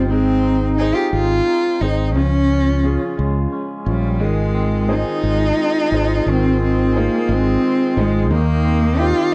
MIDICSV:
0, 0, Header, 1, 7, 480
1, 0, Start_track
1, 0, Key_signature, -4, "major"
1, 0, Tempo, 683371
1, 77, Time_signature, 6, 3, 24, 8
1, 6564, End_track
2, 0, Start_track
2, 0, Title_t, "Harmonium"
2, 0, Program_c, 0, 20
2, 2953, Note_on_c, 0, 75, 61
2, 2953, Note_on_c, 0, 84, 74
2, 2958, Note_on_c, 0, 68, 68
2, 5810, Note_off_c, 0, 75, 0
2, 5810, Note_off_c, 0, 84, 0
2, 5812, Note_off_c, 0, 68, 0
2, 5844, Note_on_c, 0, 84, 86
2, 5846, Note_on_c, 0, 67, 75
2, 5853, Note_on_c, 0, 75, 71
2, 6564, Note_off_c, 0, 67, 0
2, 6564, Note_off_c, 0, 75, 0
2, 6564, Note_off_c, 0, 84, 0
2, 6564, End_track
3, 0, Start_track
3, 0, Title_t, "Clarinet"
3, 0, Program_c, 1, 71
3, 0, Note_on_c, 1, 65, 102
3, 74, Note_on_c, 1, 63, 93
3, 85, Note_off_c, 1, 65, 0
3, 1324, Note_off_c, 1, 63, 0
3, 1510, Note_on_c, 1, 65, 88
3, 2687, Note_off_c, 1, 65, 0
3, 2957, Note_on_c, 1, 65, 102
3, 5834, Note_on_c, 1, 63, 101
3, 5845, Note_off_c, 1, 65, 0
3, 6564, Note_off_c, 1, 63, 0
3, 6564, End_track
4, 0, Start_track
4, 0, Title_t, "Upright piano"
4, 0, Program_c, 2, 0
4, 0, Control_c, 2, 64, 127
4, 0, Note_on_c, 2, 55, 60
4, 0, Note_on_c, 2, 63, 46
4, 0, Note_on_c, 2, 67, 44
4, 0, Note_on_c, 2, 72, 51
4, 71, Note_off_c, 2, 63, 0
4, 71, Note_off_c, 2, 67, 0
4, 74, Note_off_c, 2, 72, 0
4, 83, Note_on_c, 2, 56, 59
4, 87, Control_c, 2, 64, 0
4, 92, Note_off_c, 2, 55, 0
4, 227, Control_c, 2, 64, 127
4, 561, Note_on_c, 2, 68, 46
4, 563, Note_on_c, 2, 63, 49
4, 566, Note_on_c, 2, 72, 57
4, 1022, Note_off_c, 2, 68, 0
4, 1023, Note_off_c, 2, 63, 0
4, 1025, Note_off_c, 2, 72, 0
4, 1276, Note_on_c, 2, 63, 48
4, 1278, Note_on_c, 2, 68, 42
4, 1283, Note_on_c, 2, 72, 53
4, 1488, Note_off_c, 2, 56, 0
4, 1508, Note_off_c, 2, 63, 0
4, 1508, Note_off_c, 2, 68, 0
4, 1511, Note_off_c, 2, 72, 0
4, 1519, Note_on_c, 2, 49, 65
4, 1523, Control_c, 2, 64, 0
4, 1633, Control_c, 2, 64, 127
4, 1992, Note_on_c, 2, 61, 46
4, 1992, Note_on_c, 2, 65, 45
4, 1996, Note_on_c, 2, 68, 53
4, 2460, Note_off_c, 2, 61, 0
4, 2460, Note_off_c, 2, 65, 0
4, 2462, Note_off_c, 2, 68, 0
4, 2704, Note_on_c, 2, 61, 46
4, 2712, Note_on_c, 2, 65, 41
4, 2934, Note_off_c, 2, 49, 0
4, 2945, Note_off_c, 2, 61, 0
4, 2945, Note_on_c, 2, 56, 61
4, 2949, Note_off_c, 2, 65, 0
4, 2968, Control_c, 2, 64, 0
4, 3101, Control_c, 2, 64, 127
4, 3428, Note_on_c, 2, 63, 48
4, 3429, Note_on_c, 2, 68, 45
4, 3433, Note_on_c, 2, 72, 54
4, 3902, Note_off_c, 2, 63, 0
4, 3902, Note_off_c, 2, 68, 0
4, 3904, Note_off_c, 2, 72, 0
4, 4163, Note_on_c, 2, 63, 45
4, 4165, Note_on_c, 2, 68, 43
4, 4171, Note_on_c, 2, 72, 51
4, 4368, Note_off_c, 2, 56, 0
4, 4408, Note_on_c, 2, 51, 63
4, 4628, Note_off_c, 2, 63, 0
4, 4629, Note_off_c, 2, 68, 0
4, 4632, Note_off_c, 2, 72, 0
4, 4888, Note_on_c, 2, 68, 46
4, 4890, Note_on_c, 2, 63, 51
4, 4890, Note_on_c, 2, 72, 58
4, 5350, Note_off_c, 2, 68, 0
4, 5351, Note_off_c, 2, 63, 0
4, 5351, Note_off_c, 2, 72, 0
4, 5593, Note_on_c, 2, 63, 48
4, 5599, Note_on_c, 2, 68, 46
4, 5602, Note_on_c, 2, 72, 53
4, 5816, Note_off_c, 2, 51, 0
4, 5830, Note_off_c, 2, 63, 0
4, 5833, Note_off_c, 2, 68, 0
4, 5834, Note_off_c, 2, 72, 0
4, 5839, Note_on_c, 2, 51, 66
4, 5850, Control_c, 2, 64, 0
4, 5975, Control_c, 2, 64, 127
4, 6321, Note_on_c, 2, 60, 47
4, 6328, Note_on_c, 2, 63, 43
4, 6329, Note_on_c, 2, 67, 57
4, 6564, Note_off_c, 2, 51, 0
4, 6564, Note_off_c, 2, 60, 0
4, 6564, Note_off_c, 2, 63, 0
4, 6564, Note_off_c, 2, 67, 0
4, 6564, End_track
5, 0, Start_track
5, 0, Title_t, "Cello"
5, 0, Program_c, 3, 42
5, 67, Note_on_c, 3, 60, 92
5, 523, Note_off_c, 3, 60, 0
5, 547, Note_on_c, 3, 63, 89
5, 663, Note_on_c, 3, 67, 88
5, 664, Note_on_c, 3, 65, 77
5, 673, Note_off_c, 3, 63, 0
5, 674, Note_off_c, 3, 67, 0
5, 775, Note_off_c, 3, 65, 0
5, 775, Note_on_c, 3, 65, 102
5, 1267, Note_on_c, 3, 63, 85
5, 1278, Note_off_c, 3, 65, 0
5, 1507, Note_off_c, 3, 63, 0
5, 1511, Note_on_c, 3, 61, 97
5, 2206, Note_off_c, 3, 61, 0
5, 2736, Note_on_c, 3, 55, 71
5, 2982, Note_on_c, 3, 56, 81
5, 2992, Note_off_c, 3, 55, 0
5, 3469, Note_on_c, 3, 63, 100
5, 3480, Note_off_c, 3, 56, 0
5, 4423, Note_on_c, 3, 60, 93
5, 4433, Note_off_c, 3, 63, 0
5, 4652, Note_off_c, 3, 60, 0
5, 4662, Note_on_c, 3, 60, 86
5, 4902, Note_on_c, 3, 58, 89
5, 4913, Note_off_c, 3, 60, 0
5, 5142, Note_on_c, 3, 60, 99
5, 5152, Note_off_c, 3, 58, 0
5, 5619, Note_on_c, 3, 56, 84
5, 5630, Note_off_c, 3, 60, 0
5, 5844, Note_off_c, 3, 56, 0
5, 5848, Note_on_c, 3, 58, 95
5, 6311, Note_on_c, 3, 65, 102
5, 6321, Note_off_c, 3, 58, 0
5, 6558, Note_off_c, 3, 65, 0
5, 6564, End_track
6, 0, Start_track
6, 0, Title_t, "Clean electric guitar"
6, 0, Program_c, 4, 27
6, 0, Note_on_c, 4, 55, 65
6, 0, Note_on_c, 4, 63, 50
6, 0, Note_on_c, 4, 67, 59
6, 71, Note_on_c, 4, 60, 69
6, 75, Note_off_c, 4, 55, 0
6, 119, Note_off_c, 4, 63, 0
6, 125, Note_off_c, 4, 67, 0
6, 312, Note_on_c, 4, 63, 52
6, 551, Note_on_c, 4, 68, 59
6, 788, Note_off_c, 4, 60, 0
6, 796, Note_on_c, 4, 60, 64
6, 1027, Note_off_c, 4, 63, 0
6, 1036, Note_on_c, 4, 63, 50
6, 1272, Note_off_c, 4, 60, 0
6, 1281, Note_on_c, 4, 60, 54
6, 1514, Note_on_c, 4, 53, 65
6, 1562, Note_off_c, 4, 63, 0
6, 1565, Note_off_c, 4, 60, 0
6, 1754, Note_on_c, 4, 61, 50
6, 2231, Note_on_c, 4, 56, 60
6, 2467, Note_off_c, 4, 61, 0
6, 2475, Note_on_c, 4, 61, 51
6, 2950, Note_off_c, 4, 53, 0
6, 2953, Note_on_c, 4, 51, 71
6, 3007, Note_off_c, 4, 61, 0
6, 3009, Note_off_c, 4, 68, 0
6, 3193, Note_on_c, 4, 60, 54
6, 3435, Note_on_c, 4, 68, 60
6, 3673, Note_off_c, 4, 56, 0
6, 3676, Note_on_c, 4, 56, 59
6, 3912, Note_off_c, 4, 60, 0
6, 3915, Note_on_c, 4, 60, 49
6, 4142, Note_off_c, 4, 56, 0
6, 4150, Note_on_c, 4, 56, 57
6, 4381, Note_off_c, 4, 51, 0
6, 4390, Note_on_c, 4, 51, 69
6, 4623, Note_off_c, 4, 60, 0
6, 4626, Note_on_c, 4, 60, 53
6, 4860, Note_off_c, 4, 68, 0
6, 4869, Note_on_c, 4, 68, 62
6, 5107, Note_off_c, 4, 56, 0
6, 5115, Note_on_c, 4, 56, 64
6, 5342, Note_off_c, 4, 60, 0
6, 5350, Note_on_c, 4, 60, 57
6, 5585, Note_off_c, 4, 56, 0
6, 5593, Note_on_c, 4, 56, 59
6, 5827, Note_off_c, 4, 51, 0
6, 5836, Note_on_c, 4, 51, 76
6, 5882, Note_off_c, 4, 68, 0
6, 5884, Note_off_c, 4, 60, 0
6, 5885, Note_off_c, 4, 56, 0
6, 6076, Note_on_c, 4, 60, 59
6, 6314, Note_on_c, 4, 67, 63
6, 6564, Note_off_c, 4, 51, 0
6, 6564, Note_off_c, 4, 60, 0
6, 6564, Note_off_c, 4, 67, 0
6, 6564, End_track
7, 0, Start_track
7, 0, Title_t, "Fingered electric bass"
7, 0, Program_c, 5, 33
7, 0, Note_on_c, 5, 31, 78
7, 72, Note_off_c, 5, 31, 0
7, 72, Note_on_c, 5, 32, 89
7, 642, Note_off_c, 5, 32, 0
7, 791, Note_on_c, 5, 32, 85
7, 982, Note_off_c, 5, 32, 0
7, 1271, Note_on_c, 5, 32, 81
7, 1513, Note_off_c, 5, 32, 0
7, 1513, Note_on_c, 5, 37, 86
7, 2084, Note_off_c, 5, 37, 0
7, 2239, Note_on_c, 5, 37, 83
7, 2428, Note_off_c, 5, 37, 0
7, 2713, Note_on_c, 5, 34, 83
7, 2959, Note_off_c, 5, 34, 0
7, 2959, Note_on_c, 5, 32, 79
7, 3532, Note_off_c, 5, 32, 0
7, 3676, Note_on_c, 5, 32, 88
7, 3869, Note_off_c, 5, 32, 0
7, 4157, Note_on_c, 5, 32, 81
7, 4349, Note_off_c, 5, 32, 0
7, 4399, Note_on_c, 5, 32, 89
7, 4970, Note_off_c, 5, 32, 0
7, 5118, Note_on_c, 5, 32, 89
7, 5309, Note_off_c, 5, 32, 0
7, 5598, Note_on_c, 5, 32, 88
7, 5834, Note_off_c, 5, 32, 0
7, 5834, Note_on_c, 5, 39, 90
7, 6405, Note_off_c, 5, 39, 0
7, 6564, End_track
0, 0, End_of_file